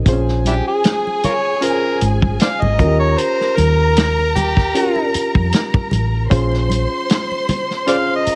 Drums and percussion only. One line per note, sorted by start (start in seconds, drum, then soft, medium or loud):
0.06 kick loud
0.06 closed hi-hat medium
0.06 muted conga soft
0.28 snare soft
0.45 closed hi-hat medium
0.45 high conga medium
0.84 snare loud
0.84 closed hi-hat medium
0.84 muted conga soft
1.07 muted conga soft
1.23 closed hi-hat medium
1.23 high conga medium
1.23 low conga medium
1.62 closed hi-hat medium
2.01 closed hi-hat medium
2.22 kick medium
2.22 high conga medium
2.40 snare loud
2.40 closed hi-hat medium
2.40 muted conga soft
2.62 muted conga soft
2.62 high conga medium
2.62 low conga medium
2.79 kick medium
2.79 closed hi-hat medium
2.79 high conga medium
2.79 low conga medium
3.18 closed hi-hat medium
3.41 snare soft
3.57 closed hi-hat medium
3.57 high conga medium
3.96 snare loud
3.96 closed hi-hat medium
3.96 muted conga soft
4.19 muted conga soft
4.36 closed hi-hat medium
4.36 high conga medium
4.36 low conga medium
4.57 kick medium
4.57 snare soft
4.75 closed hi-hat medium
4.96 muted conga soft
5.14 closed hi-hat medium
5.35 kick medium
5.35 high conga medium
5.52 snare loud
5.52 closed hi-hat medium
5.74 kick loud
5.74 muted conga soft
5.74 high conga medium
5.74 low conga medium
5.91 closed hi-hat medium
5.91 high conga medium
5.91 low conga medium
6.31 kick loud
6.31 closed hi-hat medium
6.52 snare soft
6.52 muted conga soft
6.70 closed hi-hat medium
6.70 high conga medium
7.09 snare loud
7.09 closed hi-hat medium
7.31 muted conga soft
7.49 closed hi-hat medium
7.49 high conga medium
7.49 low conga medium
7.71 snare soft
7.87 closed hi-hat medium
7.87 muted conga soft
8.26 closed hi-hat medium